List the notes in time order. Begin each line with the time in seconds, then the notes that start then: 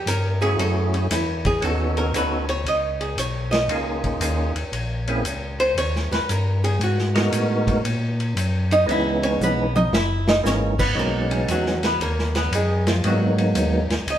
0.06 G2 A#4, hi-hat pedal, ride
0.41 A3 C#4 E4 F#4 G#4, ride
0.57 F#2 A4, ride
0.94 C#4, ride
1.10 E2 E4, snare, hi-hat pedal, ride
1.45 G#4, kick, ride
1.61 D#2 B3 C#4 D#4 F#4 A4, ride
1.97 A#4, ride
2.13 D2 B3 C#4 D#4 F#4 A4 B4, hi-hat pedal, ride
2.49 C#5, ride
2.65 C#2 D#5, ride
3.01 G#4, ride
3.17 B1 C#5, hi-hat pedal, ride
3.51 D#5, snare, ride
3.68 C#2 A#3 C#4 D#4 F4 G#4, ride
4.04 kick, ride
4.20 D#2 A#3 C#4 D#4 F4 G#4, hi-hat pedal, ride
4.56 D#2, ride
4.72 A#1, ride
5.08 A#3 C4 C#4 E4 G#4, ride
5.24 C#2, hi-hat pedal, ride
5.60 C5, ride
5.76 D#2 C#5, ride
5.96 snare
6.11 D#2 B4, snare, ride
6.29 G2 A#4, hi-hat pedal, ride
6.64 G#4, ride
6.79 G#2, ride
6.84 F#4
6.98 snare
7.15 G#3 B3 D#4 F#4 A#4, snare, ride
7.33 A2, hi-hat pedal, ride
7.67 kick, ride
7.84 A#2, ride
8.20 ride
8.35 F#2, hi-hat pedal, ride
8.71 D#4 D#5, ride
8.86 C#2 E3 G#3 B3 C#4 D#4, ride
8.91 E4 E5
9.23 C#4 C#5, ride
9.39 B1, hi-hat pedal, high tom
9.43 B3 B4
9.76 D#4 D#5, high tom
9.91 F#1 E5, snare
9.95 E4
10.28 D#4 D#5, snare
10.43 G#1 E3 G#3 A#3 C#4 D#4 C#5, snare, hi-hat pedal
10.47 C#4
10.79 B3 B4, kick, crash
10.95 B1 F#3 G#3 B3 C#4 D#4
10.99 A#3 A#4
11.30 C#3 C#4, ride
11.48 E2 F#3 F#4, hi-hat pedal, ride
11.66 snare
11.83 B3 B4, snare, ride
11.99 D#2 A#3 A#4, ride
12.19 snare
12.35 B3 B4, snare, ride
12.51 F#2 G#3, hi-hat pedal, ride
12.55 G#4
12.87 F3 F4, snare, ride
13.04 G#2 F#3 G#3 A#3 B3 D#4 F#4, ride
13.38 ride
13.55 D#2, hi-hat pedal, ride
13.90 D#2, snare, ride
14.06 C#2, ride
14.10 D#5